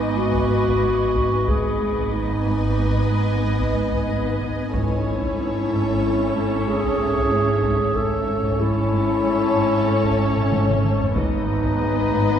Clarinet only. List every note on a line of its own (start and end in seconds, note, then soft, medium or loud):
0.00 0.19 D#4 medium
0.17 1.49 F#4 medium
1.48 2.12 G#4 medium
2.12 4.37 D#4 soft
4.74 6.69 E4 medium
6.68 7.97 G#4 medium
7.96 8.62 A4 medium
8.60 10.85 E4 medium
11.18 12.39 D#4 medium